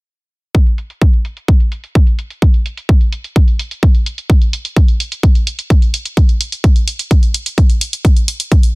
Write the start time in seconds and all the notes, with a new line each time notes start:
0.55 kick
0.66 closed hi-hat
0.78 closed hi-hat
0.90 closed hi-hat
1.02 kick
1.13 closed hi-hat
1.25 closed hi-hat
1.37 closed hi-hat
1.48 kick, closed hi-hat
1.60 closed hi-hat
1.72 closed hi-hat
1.84 closed hi-hat
1.95 kick, closed hi-hat
2.07 closed hi-hat
2.19 closed hi-hat
2.30 closed hi-hat
2.42 kick, closed hi-hat
2.54 closed hi-hat
2.66 closed hi-hat
2.77 closed hi-hat
2.89 kick, closed hi-hat
3.01 closed hi-hat
3.12 closed hi-hat
3.24 closed hi-hat
3.36 kick, closed hi-hat
3.48 closed hi-hat
3.59 closed hi-hat
3.71 closed hi-hat
3.83 kick, closed hi-hat
3.95 closed hi-hat
4.06 closed hi-hat
4.18 closed hi-hat
4.30 kick, closed hi-hat
4.42 closed hi-hat
4.53 closed hi-hat
4.65 closed hi-hat
4.76 kick, closed hi-hat
4.88 closed hi-hat
5.00 closed hi-hat
5.12 closed hi-hat
5.23 kick, closed hi-hat
5.35 closed hi-hat
5.47 closed hi-hat
5.59 closed hi-hat
5.70 kick, closed hi-hat
5.82 closed hi-hat
5.94 closed hi-hat
6.05 closed hi-hat
6.17 kick, closed hi-hat
6.29 closed hi-hat
6.41 closed hi-hat
6.52 closed hi-hat
6.64 kick, closed hi-hat
6.76 closed hi-hat
6.88 closed hi-hat
6.99 closed hi-hat
7.11 kick, closed hi-hat
7.23 closed hi-hat
7.34 closed hi-hat
7.46 closed hi-hat
7.58 kick, closed hi-hat
7.70 closed hi-hat
7.81 closed hi-hat
7.93 closed hi-hat
8.05 kick, closed hi-hat
8.16 closed hi-hat
8.28 closed hi-hat
8.40 closed hi-hat
8.52 kick, closed hi-hat
8.63 closed hi-hat